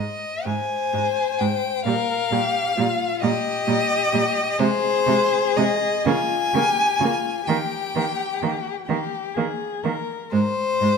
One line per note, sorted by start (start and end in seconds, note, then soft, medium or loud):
0.00 0.46 D#5 medium
0.45 0.54 G#2 medium
0.45 0.54 G#3 soft
0.45 1.83 C5 medium
0.45 1.40 G#5 medium
0.93 1.02 G#2 medium
0.93 1.01 G#3 soft
1.38 1.49 G#2 medium
1.38 1.48 G#3 soft
1.38 1.84 G5 medium
1.84 1.94 A#2 medium
1.84 1.94 G3 medium
1.84 2.35 A#4 medium
1.84 3.19 F5 loud
2.31 2.39 A#2 medium
2.31 2.40 G3 soft
2.31 2.77 G4 medium
2.77 2.87 A#2 medium
2.77 2.85 G3 medium
2.77 3.23 F4 medium
3.21 3.31 A#2 medium
3.21 3.30 G3 medium
3.21 4.59 G4 medium
3.21 4.60 D#5 loud
3.67 3.76 A#2 medium
3.67 3.75 G3 medium
4.13 4.21 A#2 medium
4.13 4.21 G3 medium
4.59 4.68 C3 medium
4.59 4.67 G#3 medium
4.59 6.04 G#4 medium
4.59 5.58 C5 loud
5.07 5.15 C3 medium
5.07 5.15 G#3 medium
5.56 5.65 C3 medium
5.56 5.65 G#3 medium
5.56 6.07 D#5 medium
6.06 6.14 C#3 medium
6.06 6.14 A#3 medium
6.06 6.55 F4 medium
6.06 7.49 G#5 loud
6.53 6.62 C#3 medium
6.53 6.64 A#3 medium
6.53 7.01 G4 medium
6.99 7.08 C#3 medium
6.99 7.46 F4 medium
7.03 7.11 A#3 medium
7.46 7.56 D#3 medium
7.46 7.57 A#3 medium
7.46 8.76 G4 medium
7.46 8.88 G5 medium
7.95 8.03 D#3 medium
7.95 8.04 A#3 soft
8.42 8.50 D#3 medium
8.42 8.51 A#3 soft
8.87 8.97 D#3 medium
8.87 8.97 A#3 soft
8.87 9.36 G4 medium
9.34 9.45 D#3 medium
9.34 9.45 A#3 medium
9.34 9.84 G#4 medium
9.83 9.92 D#3 medium
9.83 9.93 A#3 soft
9.83 10.32 A#4 medium
10.32 10.41 G#2 medium
10.32 10.40 G#3 medium
10.32 10.98 C5 medium
10.81 10.89 G#2 medium
10.81 10.90 G#3 medium